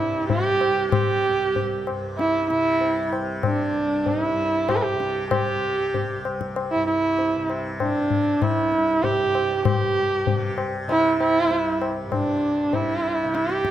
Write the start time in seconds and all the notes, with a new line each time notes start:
Already playing: C2 G2 C3 E4
0.07 C3
0.29 G4, tabla tin, tabla ge
0.61 tabla na
0.68 C3
0.92 G4, tabla na, tabla ge
1.29 C2
1.56 tabla tin, tabla ge
1.87 G2, tabla na
2.18 E4, tabla te
2.50 C3 E4, tabla te
2.81 tabla tin
3.11 C3, tabla na
3.43 D4, tabla na, tabla ge
3.72 C2
4.06 D#4, tabla tin, tabla ge
4.22 E4
4.33 G2
4.69 G4, tabla na, tabla ge
4.76 B4
4.82 G4
4.93 C3
5.00 tabla te
5.31 G4, tabla na, tabla ge
5.54 C3
5.94 tabla tin, tabla ge
6.15 C2
6.25 tabla na
6.41 tabla ke
6.56 tabla na
6.71 G2 E4
6.87 E4
7.19 tabla tin
7.36 C3
7.50 tabla na
7.80 D4, tabla na, tabla ge
7.97 C3
8.10 tabla ge
8.42 E4, tabla na, tabla ge
8.58 C2
8.72 tabla te
9.04 G4, tabla tin, tabla ge
9.18 G2
9.35 tabla na
9.65 G2 G4, tabla na, tabla ge
10.27 C3, tabla tin, tabla ge
10.58 tabla na
10.87 C3 E4, tabla na
11.20 E4, tabla na
11.45 C2
11.51 tabla tin
11.82 tabla na
12.05 G2
12.12 D4, tabla na, tabla ge
12.64 C3
12.73 E4, tabla tin, tabla ge
13.24 C3
13.35 E4, tabla te
13.49 tabla te
13.55 G4
13.65 tabla ke